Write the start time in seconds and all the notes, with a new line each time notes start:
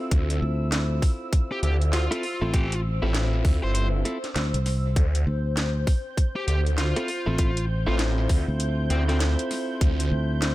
Already playing: C4 E4 F4 A4 C5 E6
0.11 D2, kick, closed hi-hat
0.30 closed hi-hat
0.42 D2
0.72 snare, closed hi-hat
1.02 kick, open hi-hat
1.33 kick, closed hi-hat
1.52 G4
1.63 D2 G4, closed hi-hat
1.82 closed hi-hat
1.93 F4, snare, closed hi-hat
2.11 C4 E4 F4 A4, closed hi-hat
2.23 open hi-hat
2.41 A1 C4 E4 F4 A4
2.53 C4 E4 F4 G4 A4, kick, closed hi-hat
2.72 closed hi-hat
3.02 A1 C4 E4 F4 A4
3.14 snare, closed hi-hat
3.33 snare
3.45 D2, kick, open hi-hat
3.63 G1 C5
3.74 C5, closed hi-hat
4.05 C4 E4 F4 A4, snare, closed hi-hat
4.24 snare, closed hi-hat
4.36 D2, snare, closed hi-hat
4.54 C2, closed hi-hat
4.66 snare, open hi-hat
4.96 D2 G6, kick, closed hi-hat
5.15 closed hi-hat
5.27 D2
5.57 snare, closed hi-hat
5.87 kick, open hi-hat
6.17 kick, closed hi-hat
6.36 G4
6.47 D2 G4, closed hi-hat
6.67 closed hi-hat
6.78 F4, snare, closed hi-hat
6.96 C4 E4 F4 A4, closed hi-hat
7.08 open hi-hat
7.26 A1 C4 E4 F4 A4
7.38 C4 E4 F4 A4, kick, closed hi-hat
7.57 closed hi-hat
7.87 A1 C4 E4 F4 A4
7.99 snare, closed hi-hat
8.18 snare
8.29 D2, kick, open hi-hat
8.48 D2
8.60 closed hi-hat
8.90 D2 C4, snare, closed hi-hat
9.08 C4 E4 F4 A4, snare, closed hi-hat
9.20 snare, closed hi-hat
9.39 closed hi-hat
9.51 snare, open hi-hat
9.81 D2, kick, closed hi-hat
10.00 closed hi-hat
10.12 D2
10.42 snare, closed hi-hat